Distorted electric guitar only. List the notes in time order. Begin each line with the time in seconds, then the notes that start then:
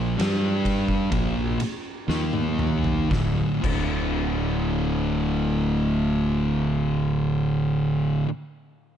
Already playing: A#2 F3 A#3
0.17 G3 D4 G4
1.10 A#2 F3 A#3
2.08 D#3 A#3 D#4
3.10 D2 A2 D3
3.61 D2 A2
3.66 D3